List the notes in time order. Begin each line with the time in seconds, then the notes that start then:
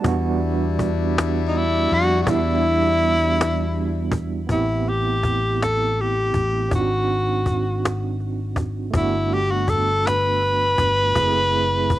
0.00 G3 B3 E4
0.04 E2 D4 F#4, cajon bass
0.41 cajon slap
0.79 cajon bass
1.18 cajon slap
1.48 D#4
1.53 E4, cajon slap
1.89 F2, cajon slap
1.94 F#4
2.23 G3 B3 F#4
2.27 E2 D4 E4, cajon bass
2.63 cajon slap
3.02 cajon slap
3.41 cajon slap
3.76 cajon slap
4.12 cajon bass
4.47 A1 B3 C4, cajon bass
4.51 E4 G4
4.85 G4, cajon slap
5.23 cajon bass
5.62 A4, cajon slap
5.98 G4, cajon slap
6.34 A1, cajon bass
6.69 C4 D4, cajon bass
6.73 G#1 D#4 F4 F#4
6.81 F#4
7.08 cajon slap
7.46 cajon bass
7.85 cajon slap
8.20 cajon slap
8.56 cajon bass
8.91 A3 B3, cajon bass
8.95 G1 D4 E4 F#4
9.29 cajon slap
9.34 G4
9.51 F#4
9.68 A4, cajon bass
10.07 B4, cajon slap
10.42 cajon slap
10.78 G1, cajon bass
11.15 F#1 A3 C4 E4 G#4, cajon bass
11.52 cajon slap
11.90 cajon bass